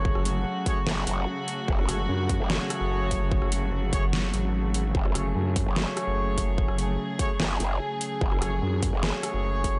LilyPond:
<<
  \new Staff \with { instrumentName = "Brass ensemble" } { \time 4/4 \key fis \minor \tempo 4 = 147 <a fis' gis' cis''>8 <a fis' gis' cis''>8 r8 <a fis' gis' cis''>8 r2 | r8 <a fis' gis' cis''>8 r8 <a fis' gis' cis''>2~ <a fis' gis' cis''>8~ | <a fis' gis' cis''>8 <a fis' gis' cis''>8 r8 <a fis' gis' cis''>8 r2 | r8 <a fis' gis' cis''>8 r8 <a fis' gis' cis''>2~ <a fis' gis' cis''>8~ |
<a fis' gis' cis''>8 <a fis' gis' cis''>8 r8 <a fis' gis' cis''>8 r2 | r8 <a fis' gis' cis''>8 r8 <a fis' gis' cis''>2~ <a fis' gis' cis''>8 | }
  \new Staff \with { instrumentName = "String section" } { \time 4/4 \key fis \minor << { fis'1~ | fis'1~ | fis'1 | gis'1~ |
gis'1~ | gis'1 | } \\ { <cis fis a>1~ | <cis fis a>1~ | <cis fis a>1~ | <cis fis a>1~ |
<cis fis a>1~ | <cis fis a>1 | } >> }
  \new Staff \with { instrumentName = "Wobble bass" } { \clef bass \time 4/4 \key fis \minor r2 fis,,8 fis,,8 r4 | fis,,8 r4 r16 fis,,8 r4. r16 | r1 | fis,,8 r4 r16 fis,,8 r4. r16 |
r2 fis,,8 fis,,8 r4 | fis,,8 r4 r16 fis,,8 r4. r16 | }
  \new Staff \with { instrumentName = "Wobble bass" } { \clef bass \time 4/4 \key fis \minor fis,,16 fis,,8. r2. | r8 fis,,8 fis,8. r4 fis,,4~ fis,,16~ | fis,,16 fis,,8. fis,,8 fis,,4 gis,,4. | r8 fis,,8 fis,8. r4 fis,,4~ fis,,16~ |
fis,,16 fis,,8. r2. | r8 fis,,8 fis,8. r4 fis,,4~ fis,,16 | }
  \new DrumStaff \with { instrumentName = "Drums" } \drummode { \time 4/4 bd16 ss16 hh8 r8 <hh bd>8 sn8 hh8 r8 hh8 | bd16 ss16 <hh ss>8 r8 <hh bd>8 sn8 <hh ss>8 r8 <hh bd>8 | bd16 ss16 hh8 r8 <hh bd>8 sn8 hh8 r8 hh8 | bd16 ss16 <hh ss>8 r8 <hh bd>8 sn8 <hh ss>8 r8 <hh bd>8 |
bd16 ss16 hh8 r8 <hh bd>8 sn8 hh8 r8 hh8 | bd16 ss16 <hh ss>8 r8 <hh bd>8 sn8 <hh ss>8 r8 <hh bd>8 | }
>>